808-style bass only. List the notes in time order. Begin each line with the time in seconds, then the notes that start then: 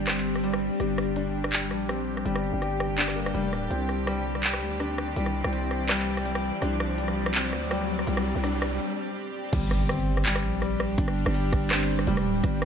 Already playing: G1
0.80 G1
1.71 A#1
2.25 G1
2.53 G1
3.34 F1
3.52 D1
3.70 C2
4.61 D2
5.16 C2
5.44 C2
6.62 C2
7.53 D2
8.07 C2
8.35 C2
9.53 G1
10.44 A#1
10.98 G1
11.26 G1
12.07 F1
12.26 D1
12.44 G1